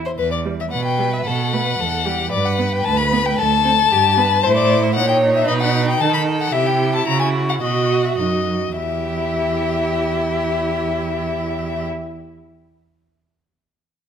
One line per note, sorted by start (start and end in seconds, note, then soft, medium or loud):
0.05 0.10 C5 soft
0.18 0.63 E2 soft
0.18 0.31 B4 medium
0.32 0.40 D5 soft
0.45 0.53 G3 soft
0.60 0.65 E5 soft
0.72 1.17 B2 soft
0.72 1.28 B4 soft
0.72 0.85 F#5 medium
0.85 1.15 G5 medium
0.99 1.07 G3 soft
1.13 1.25 E5 medium
1.26 1.70 B2 soft
1.26 1.54 A4 soft
1.26 2.30 F#5 medium
1.53 1.61 A3 soft
1.53 1.81 B4 soft
1.80 2.24 E2 soft
1.80 2.07 A4 soft
2.06 2.14 G3 soft
2.06 2.32 G4 soft
2.32 2.77 G2 medium
2.32 3.40 B4 medium
2.32 2.47 D5 medium
2.46 2.74 F#5 medium
2.59 2.67 B3 soft
2.73 2.86 G5 medium
2.85 3.30 D2 medium
2.85 2.99 A5 medium
2.98 3.28 B5 medium
3.12 3.20 B3 soft
3.26 3.38 G5 medium
3.39 3.83 D2 medium
3.39 3.93 A4 medium
3.39 4.45 A5 medium
3.65 3.73 C4 soft
3.92 4.35 G2 soft
3.92 4.19 G4 medium
4.17 4.25 B3 soft
4.17 4.43 B4 medium
4.43 4.98 A2 medium
4.43 4.97 E4 medium
4.43 4.56 C5 medium
4.43 4.95 C5 medium
4.57 4.85 D5 medium
4.83 4.94 E5 medium
4.95 5.48 A#2 medium
4.95 6.55 D#4 medium
4.95 5.47 C#5 medium
4.95 5.08 F#5 medium
5.08 5.16 G5 medium
5.36 5.47 E5 medium
5.48 6.00 B2 medium
5.48 5.99 B4 medium
5.48 5.53 D#5 medium
5.61 5.87 F#5 medium
5.88 6.02 G5 medium
6.01 6.53 D#3 soft
6.01 6.53 A4 medium
6.01 6.13 A5 medium
6.14 6.22 B5 medium
6.41 6.54 F#5 medium
6.53 7.07 C3 medium
6.53 7.62 E4 soft
6.53 7.07 G4 medium
6.53 6.68 E5 medium
6.66 6.94 G5 medium
6.95 7.07 A5 medium
7.08 7.61 C#3 soft
7.08 7.61 F#4 soft
7.08 7.20 A#5 medium
7.20 7.28 G#5 medium
7.49 7.55 F#5 medium
7.62 8.18 B2 soft
7.62 8.21 F#4 soft
7.62 8.18 F#4 soft
7.62 8.07 D#5 medium
8.05 8.18 E5 soft
8.18 8.76 F#2 soft
8.18 8.48 D#4 soft
8.18 8.55 F#4 soft
8.18 8.76 D#5 soft
8.77 11.85 E2 soft
8.77 11.85 E4 soft
8.77 11.85 G4 soft
8.77 11.85 E5 medium